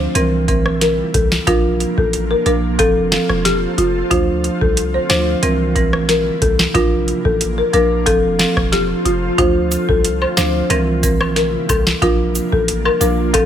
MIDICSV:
0, 0, Header, 1, 6, 480
1, 0, Start_track
1, 0, Tempo, 659341
1, 1072, Time_signature, 4, 2, 24, 8
1, 9795, End_track
2, 0, Start_track
2, 0, Title_t, "Marimba"
2, 0, Program_c, 0, 12
2, 592, Note_on_c, 0, 70, 81
2, 684, Note_off_c, 0, 70, 0
2, 832, Note_on_c, 0, 69, 75
2, 924, Note_off_c, 0, 69, 0
2, 1072, Note_on_c, 0, 65, 98
2, 1164, Note_off_c, 0, 65, 0
2, 1440, Note_on_c, 0, 69, 79
2, 1521, Note_off_c, 0, 69, 0
2, 1679, Note_on_c, 0, 70, 81
2, 1761, Note_off_c, 0, 70, 0
2, 1792, Note_on_c, 0, 70, 78
2, 1885, Note_off_c, 0, 70, 0
2, 2032, Note_on_c, 0, 69, 94
2, 2377, Note_off_c, 0, 69, 0
2, 2512, Note_on_c, 0, 67, 88
2, 2604, Note_off_c, 0, 67, 0
2, 2751, Note_on_c, 0, 65, 76
2, 2844, Note_off_c, 0, 65, 0
2, 2992, Note_on_c, 0, 65, 107
2, 3084, Note_off_c, 0, 65, 0
2, 3359, Note_on_c, 0, 69, 85
2, 3441, Note_off_c, 0, 69, 0
2, 3598, Note_on_c, 0, 72, 75
2, 3681, Note_off_c, 0, 72, 0
2, 3712, Note_on_c, 0, 72, 84
2, 3804, Note_off_c, 0, 72, 0
2, 4432, Note_on_c, 0, 70, 85
2, 4524, Note_off_c, 0, 70, 0
2, 4672, Note_on_c, 0, 69, 81
2, 4764, Note_off_c, 0, 69, 0
2, 4911, Note_on_c, 0, 65, 99
2, 5004, Note_off_c, 0, 65, 0
2, 5278, Note_on_c, 0, 69, 82
2, 5361, Note_off_c, 0, 69, 0
2, 5518, Note_on_c, 0, 70, 77
2, 5601, Note_off_c, 0, 70, 0
2, 5631, Note_on_c, 0, 70, 79
2, 5724, Note_off_c, 0, 70, 0
2, 5870, Note_on_c, 0, 69, 97
2, 6216, Note_off_c, 0, 69, 0
2, 6350, Note_on_c, 0, 67, 85
2, 6443, Note_off_c, 0, 67, 0
2, 6591, Note_on_c, 0, 65, 80
2, 6684, Note_off_c, 0, 65, 0
2, 6830, Note_on_c, 0, 65, 109
2, 6923, Note_off_c, 0, 65, 0
2, 7198, Note_on_c, 0, 69, 86
2, 7280, Note_off_c, 0, 69, 0
2, 7437, Note_on_c, 0, 72, 71
2, 7520, Note_off_c, 0, 72, 0
2, 7551, Note_on_c, 0, 72, 82
2, 7644, Note_off_c, 0, 72, 0
2, 8271, Note_on_c, 0, 70, 83
2, 8364, Note_off_c, 0, 70, 0
2, 8511, Note_on_c, 0, 69, 79
2, 8604, Note_off_c, 0, 69, 0
2, 8751, Note_on_c, 0, 65, 101
2, 8844, Note_off_c, 0, 65, 0
2, 9118, Note_on_c, 0, 69, 79
2, 9200, Note_off_c, 0, 69, 0
2, 9358, Note_on_c, 0, 70, 80
2, 9440, Note_off_c, 0, 70, 0
2, 9471, Note_on_c, 0, 70, 82
2, 9564, Note_off_c, 0, 70, 0
2, 9710, Note_on_c, 0, 69, 98
2, 9795, Note_off_c, 0, 69, 0
2, 9795, End_track
3, 0, Start_track
3, 0, Title_t, "Ambient pad"
3, 0, Program_c, 1, 92
3, 0, Note_on_c, 1, 50, 78
3, 0, Note_on_c, 1, 57, 72
3, 0, Note_on_c, 1, 60, 70
3, 0, Note_on_c, 1, 65, 88
3, 102, Note_off_c, 1, 50, 0
3, 102, Note_off_c, 1, 57, 0
3, 102, Note_off_c, 1, 60, 0
3, 102, Note_off_c, 1, 65, 0
3, 111, Note_on_c, 1, 48, 77
3, 111, Note_on_c, 1, 55, 75
3, 111, Note_on_c, 1, 58, 73
3, 111, Note_on_c, 1, 64, 89
3, 1062, Note_off_c, 1, 48, 0
3, 1062, Note_off_c, 1, 55, 0
3, 1062, Note_off_c, 1, 64, 0
3, 1071, Note_on_c, 1, 62, 70
3, 1071, Note_on_c, 1, 65, 83
3, 2012, Note_off_c, 1, 58, 0
3, 2022, Note_off_c, 1, 62, 0
3, 2022, Note_off_c, 1, 65, 0
3, 2030, Note_on_c, 1, 53, 81
3, 2031, Note_on_c, 1, 65, 71
3, 2031, Note_on_c, 1, 69, 75
3, 2031, Note_on_c, 1, 72, 84
3, 2981, Note_off_c, 1, 53, 0
3, 2981, Note_off_c, 1, 72, 0
3, 2982, Note_off_c, 1, 69, 0
3, 2991, Note_on_c, 1, 50, 79
3, 2991, Note_on_c, 1, 57, 71
3, 2991, Note_on_c, 1, 60, 70
3, 3932, Note_off_c, 1, 65, 0
3, 3942, Note_off_c, 1, 50, 0
3, 3942, Note_off_c, 1, 57, 0
3, 3942, Note_off_c, 1, 60, 0
3, 3951, Note_on_c, 1, 48, 80
3, 3951, Note_on_c, 1, 55, 74
3, 3951, Note_on_c, 1, 58, 72
3, 3951, Note_on_c, 1, 64, 89
3, 4902, Note_off_c, 1, 48, 0
3, 4902, Note_off_c, 1, 55, 0
3, 4902, Note_off_c, 1, 58, 0
3, 4902, Note_off_c, 1, 64, 0
3, 4911, Note_on_c, 1, 58, 78
3, 4911, Note_on_c, 1, 62, 74
3, 4911, Note_on_c, 1, 65, 86
3, 5861, Note_off_c, 1, 62, 0
3, 5862, Note_off_c, 1, 58, 0
3, 5870, Note_on_c, 1, 53, 82
3, 5871, Note_on_c, 1, 69, 76
3, 5871, Note_on_c, 1, 72, 87
3, 6821, Note_off_c, 1, 53, 0
3, 6821, Note_off_c, 1, 72, 0
3, 6822, Note_off_c, 1, 69, 0
3, 6832, Note_on_c, 1, 50, 76
3, 6832, Note_on_c, 1, 57, 71
3, 6832, Note_on_c, 1, 60, 74
3, 7762, Note_off_c, 1, 65, 0
3, 7782, Note_off_c, 1, 50, 0
3, 7782, Note_off_c, 1, 57, 0
3, 7782, Note_off_c, 1, 60, 0
3, 7791, Note_on_c, 1, 55, 72
3, 7791, Note_on_c, 1, 58, 74
3, 7791, Note_on_c, 1, 64, 91
3, 7792, Note_on_c, 1, 48, 78
3, 8742, Note_off_c, 1, 48, 0
3, 8742, Note_off_c, 1, 55, 0
3, 8742, Note_off_c, 1, 64, 0
3, 8751, Note_on_c, 1, 62, 74
3, 8751, Note_on_c, 1, 65, 92
3, 9692, Note_off_c, 1, 58, 0
3, 9702, Note_off_c, 1, 62, 0
3, 9711, Note_on_c, 1, 69, 74
3, 9711, Note_on_c, 1, 72, 84
3, 9712, Note_on_c, 1, 53, 82
3, 9795, Note_off_c, 1, 53, 0
3, 9795, Note_off_c, 1, 65, 0
3, 9795, Note_off_c, 1, 69, 0
3, 9795, Note_off_c, 1, 72, 0
3, 9795, End_track
4, 0, Start_track
4, 0, Title_t, "Marimba"
4, 0, Program_c, 2, 12
4, 109, Note_on_c, 2, 52, 94
4, 111, Note_on_c, 2, 60, 83
4, 113, Note_on_c, 2, 70, 102
4, 332, Note_off_c, 2, 52, 0
4, 333, Note_off_c, 2, 60, 0
4, 334, Note_off_c, 2, 70, 0
4, 349, Note_on_c, 2, 52, 80
4, 351, Note_on_c, 2, 60, 76
4, 354, Note_on_c, 2, 70, 89
4, 457, Note_off_c, 2, 52, 0
4, 458, Note_off_c, 2, 60, 0
4, 459, Note_off_c, 2, 70, 0
4, 1070, Note_on_c, 2, 53, 95
4, 1072, Note_on_c, 2, 62, 89
4, 1074, Note_on_c, 2, 70, 110
4, 1514, Note_off_c, 2, 53, 0
4, 1516, Note_off_c, 2, 62, 0
4, 1517, Note_off_c, 2, 70, 0
4, 1789, Note_on_c, 2, 53, 73
4, 1792, Note_on_c, 2, 62, 68
4, 1794, Note_on_c, 2, 70, 83
4, 1897, Note_off_c, 2, 53, 0
4, 1898, Note_off_c, 2, 62, 0
4, 1899, Note_off_c, 2, 70, 0
4, 2030, Note_on_c, 2, 53, 92
4, 2032, Note_on_c, 2, 60, 84
4, 2034, Note_on_c, 2, 69, 106
4, 2253, Note_off_c, 2, 53, 0
4, 2254, Note_off_c, 2, 60, 0
4, 2255, Note_off_c, 2, 69, 0
4, 2270, Note_on_c, 2, 53, 81
4, 2272, Note_on_c, 2, 60, 71
4, 2274, Note_on_c, 2, 69, 93
4, 2377, Note_off_c, 2, 53, 0
4, 2378, Note_off_c, 2, 60, 0
4, 2379, Note_off_c, 2, 69, 0
4, 2990, Note_on_c, 2, 53, 98
4, 2992, Note_on_c, 2, 62, 91
4, 2994, Note_on_c, 2, 72, 106
4, 3435, Note_off_c, 2, 53, 0
4, 3436, Note_off_c, 2, 62, 0
4, 3437, Note_off_c, 2, 72, 0
4, 3709, Note_on_c, 2, 53, 77
4, 3711, Note_on_c, 2, 62, 70
4, 3714, Note_on_c, 2, 72, 85
4, 3817, Note_off_c, 2, 53, 0
4, 3818, Note_off_c, 2, 62, 0
4, 3819, Note_off_c, 2, 72, 0
4, 3949, Note_on_c, 2, 52, 93
4, 3951, Note_on_c, 2, 60, 91
4, 3954, Note_on_c, 2, 70, 106
4, 4172, Note_off_c, 2, 52, 0
4, 4173, Note_off_c, 2, 60, 0
4, 4175, Note_off_c, 2, 70, 0
4, 4189, Note_on_c, 2, 52, 82
4, 4191, Note_on_c, 2, 60, 76
4, 4193, Note_on_c, 2, 70, 90
4, 4296, Note_off_c, 2, 52, 0
4, 4298, Note_off_c, 2, 60, 0
4, 4299, Note_off_c, 2, 70, 0
4, 4909, Note_on_c, 2, 53, 93
4, 4912, Note_on_c, 2, 62, 91
4, 4914, Note_on_c, 2, 70, 108
4, 5354, Note_off_c, 2, 53, 0
4, 5356, Note_off_c, 2, 62, 0
4, 5357, Note_off_c, 2, 70, 0
4, 5629, Note_on_c, 2, 53, 78
4, 5632, Note_on_c, 2, 62, 69
4, 5634, Note_on_c, 2, 70, 83
4, 5737, Note_off_c, 2, 53, 0
4, 5738, Note_off_c, 2, 62, 0
4, 5739, Note_off_c, 2, 70, 0
4, 5869, Note_on_c, 2, 53, 95
4, 5872, Note_on_c, 2, 60, 82
4, 5874, Note_on_c, 2, 69, 101
4, 6092, Note_off_c, 2, 53, 0
4, 6094, Note_off_c, 2, 60, 0
4, 6095, Note_off_c, 2, 69, 0
4, 6110, Note_on_c, 2, 53, 81
4, 6112, Note_on_c, 2, 60, 73
4, 6114, Note_on_c, 2, 69, 85
4, 6217, Note_off_c, 2, 53, 0
4, 6218, Note_off_c, 2, 60, 0
4, 6219, Note_off_c, 2, 69, 0
4, 6829, Note_on_c, 2, 53, 96
4, 6831, Note_on_c, 2, 62, 90
4, 6834, Note_on_c, 2, 72, 107
4, 7274, Note_off_c, 2, 53, 0
4, 7275, Note_off_c, 2, 62, 0
4, 7276, Note_off_c, 2, 72, 0
4, 7550, Note_on_c, 2, 53, 76
4, 7551, Note_on_c, 2, 62, 71
4, 7554, Note_on_c, 2, 72, 86
4, 7657, Note_off_c, 2, 53, 0
4, 7658, Note_off_c, 2, 62, 0
4, 7659, Note_off_c, 2, 72, 0
4, 7789, Note_on_c, 2, 52, 95
4, 7791, Note_on_c, 2, 60, 85
4, 7793, Note_on_c, 2, 70, 102
4, 8012, Note_off_c, 2, 52, 0
4, 8013, Note_off_c, 2, 60, 0
4, 8014, Note_off_c, 2, 70, 0
4, 8029, Note_on_c, 2, 52, 77
4, 8031, Note_on_c, 2, 60, 74
4, 8033, Note_on_c, 2, 70, 92
4, 8136, Note_off_c, 2, 52, 0
4, 8138, Note_off_c, 2, 60, 0
4, 8139, Note_off_c, 2, 70, 0
4, 8749, Note_on_c, 2, 53, 97
4, 8752, Note_on_c, 2, 62, 88
4, 8754, Note_on_c, 2, 70, 106
4, 9194, Note_off_c, 2, 53, 0
4, 9195, Note_off_c, 2, 62, 0
4, 9197, Note_off_c, 2, 70, 0
4, 9469, Note_on_c, 2, 53, 72
4, 9471, Note_on_c, 2, 62, 73
4, 9474, Note_on_c, 2, 70, 84
4, 9577, Note_off_c, 2, 53, 0
4, 9578, Note_off_c, 2, 62, 0
4, 9579, Note_off_c, 2, 70, 0
4, 9709, Note_on_c, 2, 53, 93
4, 9712, Note_on_c, 2, 60, 85
4, 9714, Note_on_c, 2, 69, 103
4, 9795, Note_off_c, 2, 53, 0
4, 9795, Note_off_c, 2, 60, 0
4, 9795, Note_off_c, 2, 69, 0
4, 9795, End_track
5, 0, Start_track
5, 0, Title_t, "808-style bass"
5, 0, Program_c, 3, 38
5, 112, Note_on_c, 3, 36, 112
5, 479, Note_on_c, 3, 34, 99
5, 490, Note_off_c, 3, 36, 0
5, 748, Note_off_c, 3, 34, 0
5, 833, Note_on_c, 3, 36, 101
5, 1016, Note_off_c, 3, 36, 0
5, 1071, Note_on_c, 3, 34, 105
5, 1352, Note_off_c, 3, 34, 0
5, 1440, Note_on_c, 3, 33, 97
5, 1709, Note_off_c, 3, 33, 0
5, 1791, Note_on_c, 3, 34, 98
5, 2034, Note_on_c, 3, 29, 101
5, 2045, Note_off_c, 3, 34, 0
5, 2313, Note_off_c, 3, 29, 0
5, 2399, Note_on_c, 3, 28, 94
5, 2668, Note_off_c, 3, 28, 0
5, 2752, Note_on_c, 3, 29, 106
5, 2935, Note_off_c, 3, 29, 0
5, 2992, Note_on_c, 3, 38, 104
5, 3272, Note_off_c, 3, 38, 0
5, 3360, Note_on_c, 3, 36, 95
5, 3629, Note_off_c, 3, 36, 0
5, 3712, Note_on_c, 3, 38, 98
5, 3895, Note_off_c, 3, 38, 0
5, 3951, Note_on_c, 3, 36, 111
5, 4319, Note_on_c, 3, 34, 97
5, 4330, Note_off_c, 3, 36, 0
5, 4588, Note_off_c, 3, 34, 0
5, 4673, Note_on_c, 3, 36, 101
5, 4856, Note_off_c, 3, 36, 0
5, 4912, Note_on_c, 3, 34, 108
5, 5192, Note_off_c, 3, 34, 0
5, 5279, Note_on_c, 3, 33, 96
5, 5549, Note_off_c, 3, 33, 0
5, 5632, Note_on_c, 3, 34, 98
5, 5874, Note_on_c, 3, 29, 100
5, 5885, Note_off_c, 3, 34, 0
5, 6153, Note_off_c, 3, 29, 0
5, 6238, Note_on_c, 3, 28, 94
5, 6508, Note_off_c, 3, 28, 0
5, 6592, Note_on_c, 3, 29, 107
5, 6775, Note_off_c, 3, 29, 0
5, 6831, Note_on_c, 3, 38, 96
5, 7112, Note_off_c, 3, 38, 0
5, 7199, Note_on_c, 3, 36, 94
5, 7469, Note_off_c, 3, 36, 0
5, 7551, Note_on_c, 3, 38, 94
5, 7735, Note_off_c, 3, 38, 0
5, 7791, Note_on_c, 3, 36, 112
5, 8159, Note_on_c, 3, 34, 97
5, 8170, Note_off_c, 3, 36, 0
5, 8428, Note_off_c, 3, 34, 0
5, 8513, Note_on_c, 3, 36, 102
5, 8696, Note_off_c, 3, 36, 0
5, 8751, Note_on_c, 3, 34, 107
5, 9032, Note_off_c, 3, 34, 0
5, 9119, Note_on_c, 3, 33, 101
5, 9389, Note_off_c, 3, 33, 0
5, 9472, Note_on_c, 3, 34, 98
5, 9713, Note_on_c, 3, 29, 96
5, 9724, Note_off_c, 3, 34, 0
5, 9795, Note_off_c, 3, 29, 0
5, 9795, End_track
6, 0, Start_track
6, 0, Title_t, "Drums"
6, 111, Note_on_c, 9, 42, 87
6, 183, Note_off_c, 9, 42, 0
6, 351, Note_on_c, 9, 42, 65
6, 352, Note_on_c, 9, 36, 103
6, 424, Note_off_c, 9, 36, 0
6, 424, Note_off_c, 9, 42, 0
6, 478, Note_on_c, 9, 37, 94
6, 551, Note_off_c, 9, 37, 0
6, 592, Note_on_c, 9, 38, 68
6, 593, Note_on_c, 9, 42, 84
6, 665, Note_off_c, 9, 38, 0
6, 666, Note_off_c, 9, 42, 0
6, 832, Note_on_c, 9, 42, 65
6, 833, Note_on_c, 9, 36, 113
6, 905, Note_off_c, 9, 42, 0
6, 906, Note_off_c, 9, 36, 0
6, 959, Note_on_c, 9, 38, 116
6, 1032, Note_off_c, 9, 38, 0
6, 1071, Note_on_c, 9, 42, 79
6, 1072, Note_on_c, 9, 36, 114
6, 1144, Note_off_c, 9, 36, 0
6, 1144, Note_off_c, 9, 42, 0
6, 1313, Note_on_c, 9, 42, 51
6, 1386, Note_off_c, 9, 42, 0
6, 1440, Note_on_c, 9, 36, 99
6, 1512, Note_off_c, 9, 36, 0
6, 1553, Note_on_c, 9, 42, 85
6, 1625, Note_off_c, 9, 42, 0
6, 1790, Note_on_c, 9, 42, 47
6, 1863, Note_off_c, 9, 42, 0
6, 2031, Note_on_c, 9, 42, 87
6, 2034, Note_on_c, 9, 36, 93
6, 2103, Note_off_c, 9, 42, 0
6, 2106, Note_off_c, 9, 36, 0
6, 2271, Note_on_c, 9, 38, 122
6, 2271, Note_on_c, 9, 42, 65
6, 2344, Note_off_c, 9, 38, 0
6, 2344, Note_off_c, 9, 42, 0
6, 2398, Note_on_c, 9, 37, 97
6, 2471, Note_off_c, 9, 37, 0
6, 2512, Note_on_c, 9, 38, 66
6, 2513, Note_on_c, 9, 42, 81
6, 2585, Note_off_c, 9, 38, 0
6, 2586, Note_off_c, 9, 42, 0
6, 2752, Note_on_c, 9, 42, 65
6, 2825, Note_off_c, 9, 42, 0
6, 2992, Note_on_c, 9, 36, 111
6, 2992, Note_on_c, 9, 42, 77
6, 3065, Note_off_c, 9, 36, 0
6, 3065, Note_off_c, 9, 42, 0
6, 3233, Note_on_c, 9, 42, 53
6, 3306, Note_off_c, 9, 42, 0
6, 3360, Note_on_c, 9, 36, 95
6, 3433, Note_off_c, 9, 36, 0
6, 3473, Note_on_c, 9, 42, 87
6, 3546, Note_off_c, 9, 42, 0
6, 3710, Note_on_c, 9, 42, 49
6, 3711, Note_on_c, 9, 38, 121
6, 3783, Note_off_c, 9, 42, 0
6, 3784, Note_off_c, 9, 38, 0
6, 3951, Note_on_c, 9, 42, 87
6, 4024, Note_off_c, 9, 42, 0
6, 4191, Note_on_c, 9, 42, 67
6, 4192, Note_on_c, 9, 36, 110
6, 4264, Note_off_c, 9, 42, 0
6, 4265, Note_off_c, 9, 36, 0
6, 4318, Note_on_c, 9, 37, 98
6, 4391, Note_off_c, 9, 37, 0
6, 4432, Note_on_c, 9, 38, 70
6, 4433, Note_on_c, 9, 42, 81
6, 4505, Note_off_c, 9, 38, 0
6, 4505, Note_off_c, 9, 42, 0
6, 4672, Note_on_c, 9, 42, 64
6, 4673, Note_on_c, 9, 36, 113
6, 4745, Note_off_c, 9, 42, 0
6, 4746, Note_off_c, 9, 36, 0
6, 4799, Note_on_c, 9, 38, 112
6, 4872, Note_off_c, 9, 38, 0
6, 4912, Note_on_c, 9, 36, 113
6, 4912, Note_on_c, 9, 42, 78
6, 4985, Note_off_c, 9, 36, 0
6, 4985, Note_off_c, 9, 42, 0
6, 5153, Note_on_c, 9, 42, 52
6, 5226, Note_off_c, 9, 42, 0
6, 5280, Note_on_c, 9, 36, 96
6, 5352, Note_off_c, 9, 36, 0
6, 5393, Note_on_c, 9, 42, 87
6, 5466, Note_off_c, 9, 42, 0
6, 5631, Note_on_c, 9, 42, 46
6, 5703, Note_off_c, 9, 42, 0
6, 5871, Note_on_c, 9, 42, 88
6, 5874, Note_on_c, 9, 36, 93
6, 5943, Note_off_c, 9, 42, 0
6, 5946, Note_off_c, 9, 36, 0
6, 6111, Note_on_c, 9, 38, 119
6, 6111, Note_on_c, 9, 42, 66
6, 6184, Note_off_c, 9, 38, 0
6, 6184, Note_off_c, 9, 42, 0
6, 6238, Note_on_c, 9, 36, 96
6, 6238, Note_on_c, 9, 37, 98
6, 6311, Note_off_c, 9, 36, 0
6, 6311, Note_off_c, 9, 37, 0
6, 6352, Note_on_c, 9, 38, 69
6, 6353, Note_on_c, 9, 42, 83
6, 6425, Note_off_c, 9, 38, 0
6, 6426, Note_off_c, 9, 42, 0
6, 6592, Note_on_c, 9, 42, 65
6, 6665, Note_off_c, 9, 42, 0
6, 6831, Note_on_c, 9, 36, 119
6, 6831, Note_on_c, 9, 42, 80
6, 6904, Note_off_c, 9, 36, 0
6, 6904, Note_off_c, 9, 42, 0
6, 7072, Note_on_c, 9, 69, 75
6, 7073, Note_on_c, 9, 42, 52
6, 7145, Note_off_c, 9, 69, 0
6, 7146, Note_off_c, 9, 42, 0
6, 7199, Note_on_c, 9, 36, 94
6, 7272, Note_off_c, 9, 36, 0
6, 7313, Note_on_c, 9, 42, 88
6, 7385, Note_off_c, 9, 42, 0
6, 7438, Note_on_c, 9, 76, 71
6, 7511, Note_off_c, 9, 76, 0
6, 7550, Note_on_c, 9, 38, 119
6, 7550, Note_on_c, 9, 42, 47
6, 7552, Note_on_c, 9, 69, 88
6, 7623, Note_off_c, 9, 38, 0
6, 7623, Note_off_c, 9, 42, 0
6, 7625, Note_off_c, 9, 69, 0
6, 7790, Note_on_c, 9, 42, 82
6, 7793, Note_on_c, 9, 76, 64
6, 7863, Note_off_c, 9, 42, 0
6, 7865, Note_off_c, 9, 76, 0
6, 8031, Note_on_c, 9, 36, 107
6, 8031, Note_on_c, 9, 42, 66
6, 8032, Note_on_c, 9, 69, 75
6, 8104, Note_off_c, 9, 36, 0
6, 8104, Note_off_c, 9, 42, 0
6, 8105, Note_off_c, 9, 69, 0
6, 8158, Note_on_c, 9, 37, 97
6, 8160, Note_on_c, 9, 76, 70
6, 8231, Note_off_c, 9, 37, 0
6, 8232, Note_off_c, 9, 76, 0
6, 8272, Note_on_c, 9, 38, 72
6, 8273, Note_on_c, 9, 42, 86
6, 8345, Note_off_c, 9, 38, 0
6, 8345, Note_off_c, 9, 42, 0
6, 8512, Note_on_c, 9, 42, 66
6, 8513, Note_on_c, 9, 36, 104
6, 8514, Note_on_c, 9, 69, 79
6, 8514, Note_on_c, 9, 76, 78
6, 8585, Note_off_c, 9, 36, 0
6, 8585, Note_off_c, 9, 42, 0
6, 8587, Note_off_c, 9, 69, 0
6, 8587, Note_off_c, 9, 76, 0
6, 8639, Note_on_c, 9, 38, 116
6, 8712, Note_off_c, 9, 38, 0
6, 8752, Note_on_c, 9, 36, 114
6, 8752, Note_on_c, 9, 42, 75
6, 8824, Note_off_c, 9, 36, 0
6, 8824, Note_off_c, 9, 42, 0
6, 8992, Note_on_c, 9, 69, 78
6, 8993, Note_on_c, 9, 42, 51
6, 9065, Note_off_c, 9, 69, 0
6, 9066, Note_off_c, 9, 42, 0
6, 9120, Note_on_c, 9, 36, 100
6, 9192, Note_off_c, 9, 36, 0
6, 9233, Note_on_c, 9, 42, 87
6, 9305, Note_off_c, 9, 42, 0
6, 9359, Note_on_c, 9, 76, 75
6, 9432, Note_off_c, 9, 76, 0
6, 9470, Note_on_c, 9, 42, 47
6, 9473, Note_on_c, 9, 69, 88
6, 9543, Note_off_c, 9, 42, 0
6, 9545, Note_off_c, 9, 69, 0
6, 9710, Note_on_c, 9, 42, 87
6, 9713, Note_on_c, 9, 36, 99
6, 9713, Note_on_c, 9, 76, 65
6, 9783, Note_off_c, 9, 42, 0
6, 9786, Note_off_c, 9, 36, 0
6, 9786, Note_off_c, 9, 76, 0
6, 9795, End_track
0, 0, End_of_file